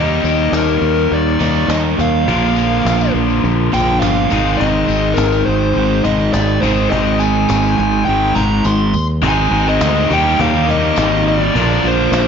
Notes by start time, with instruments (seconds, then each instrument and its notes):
Already playing: fingered electric bass D#2, overdriven electric guitar D#3 G3 A#3 D#4 G4, lead electric guitar D#5
0.24 fingered electric bass D#2, tambourine
0.52 fingered electric bass D#2, lead electric guitar A#4, cajon slap, tambourine
0.68 tambourine
0.81 fingered electric bass D#2, tambourine
0.96 tambourine
1.11 fingered electric bass D#2, lead electric guitar D5, tambourine
1.39 fingered electric bass D#2, overdriven electric guitar D#3 A#3 D#4, cajon bass, tambourine
1.56 cajon slap, tambourine
1.67 fingered electric bass D#2, overdriven electric guitar D#3 A#3 D#4, lead electric guitar D#5, cajon slap, tambourine
1.99 fingered electric bass D#2, lead electric guitar F5, cajon bass, tambourine
2.26 fingered electric bass A#1, overdriven electric guitar A#2 D3 F3 A#3 D4 A#4, cajon bass
2.56 tambourine
2.85 fingered electric bass A#1, cajon slap, tambourine
3.01 tambourine
3.14 fingered electric bass A#1, tambourine
3.30 tambourine
3.44 fingered electric bass A#1, tambourine
3.72 fingered electric bass A#1, overdriven electric guitar A#2 F3 A#3, lead electric guitar G5, cajon bass, tambourine
3.87 cajon slap
4.00 fingered electric bass G1, overdriven electric guitar A#2 F3, lead electric guitar F5, cajon slap, tambourine
4.04 overdriven electric guitar A#3
4.15 tambourine
4.29 fingered electric bass G#1, overdriven electric guitar G#2 D#3 G#3 C4 D#4, cajon bass, tambourine
4.33 overdriven electric guitar G#4
4.57 fingered electric bass G#1, lead electric guitar D#5, cajon bass
4.88 fingered electric bass G#1, tambourine
5.14 fingered electric bass G#1, lead electric guitar A#4, tambourine
5.18 cajon slap
5.32 tambourine
5.45 fingered electric bass G#1, lead electric guitar C5, tambourine
5.61 tambourine
5.74 fingered electric bass G#1, overdriven electric guitar G#2 D#3 G#3, tambourine
6.04 fingered electric bass G#1, overdriven electric guitar G#2 D#3 G#3, lead electric guitar D#5, cajon bass, tambourine
6.19 cajon slap, tambourine
6.33 fingered electric bass G#1, lead electric guitar D5, cajon slap, tambourine
6.49 tambourine
6.61 fingered electric bass G#1, overdriven electric guitar G#2 D#3 G#3 C4 D#4 G#4, lead electric guitar C5, cajon bass, tambourine
6.90 fingered electric bass G#1, lead electric guitar D#5, cajon bass, tambourine
7.06 tambourine
7.19 lead electric guitar G#5, tambourine
7.35 tambourine
7.49 fingered electric bass G#1, cajon slap, tambourine
7.63 tambourine
7.78 fingered electric bass G#1, lead electric guitar G#5, tambourine
7.91 tambourine
8.05 fingered electric bass G#1, overdriven electric guitar G#2 D#3, lead electric guitar G5, tambourine
8.09 overdriven electric guitar G#3
8.35 fingered electric bass G#1, overdriven electric guitar G#2 D#3 G#3, lead electric guitar A#5, cajon bass, tambourine
8.64 fingered electric bass G#1, lead electric guitar C6, tambourine
8.79 tambourine
8.94 fingered electric bass D#2, tambourine
9.22 fingered electric bass G#1, overdriven electric guitar G#2 D#3 G#3 C4 D#4 G#4, cajon bass
9.28 lead electric guitar G#5
9.51 fingered electric bass G#1, overdriven electric guitar D#3 G#3 C4 D#4
9.67 overdriven electric guitar G#3 C4 D#4, lead electric guitar D#5
9.81 fingered electric bass D2, overdriven electric guitar G#2 D#3 G#3 C4, cajon slap, tambourine
9.85 overdriven electric guitar D#4
10.10 fingered electric bass D#2, overdriven electric guitar D#3 G3 A#3 D#4 G4, lead electric guitar G5, cajon bass
10.24 overdriven electric guitar G3 A#3 D#4
10.39 fingered electric bass D#2, lead electric guitar F5, cajon bass
10.53 overdriven electric guitar G3 A#3 D#4
10.67 overdriven electric guitar D#3 G3 A#3 D#4, lead electric guitar D#5, cajon bass
10.82 overdriven electric guitar G3 A#3 D#4
10.95 fingered electric bass G#1, overdriven electric guitar D#3 G3 A#3 D#4, cajon slap, tambourine
11.28 lead electric guitar D#5
11.39 overdriven electric guitar G3 A#3 D#4, lead electric guitar D5
11.54 fingered electric bass A#1, overdriven electric guitar A#2 D3 F3 A#3 D4 A#4, cajon bass
11.82 fingered electric bass A#1, overdriven electric guitar D3 F3 A#3 D4
11.87 lead electric guitar C5
11.97 overdriven electric guitar F3 A#3 D4
12.12 fingered electric bass A#1, overdriven electric guitar A#2 D3 F3 A#3 D4, cajon slap, tambourine